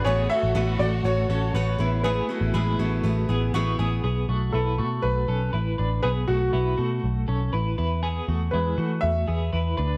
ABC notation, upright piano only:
X:1
M:4/4
L:1/8
Q:1/4=120
K:Bdor
V:1 name="Upright piano"
c e2 d c4 | B6 z2 | z2 A2 B3 z | B F3 z4 |
z2 B2 e3 z |]